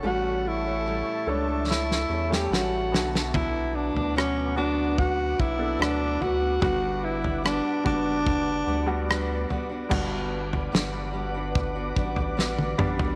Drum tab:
CC |----------------|----------------|----------------|x---------------|
SD |--------oo-oo-oo|----r-------r---|----r-------r---|----o-------o---|
T1 |----------------|----------------|----------------|-------------o--|
T2 |----------------|----------------|----------------|--------------o-|
FT |----------------|o--o----o-----o-|o--o----o-----o-|o--o----o--o---o|
BD |----------------|o-------o-o-----|o-----o-o-------|o-------o-o-----|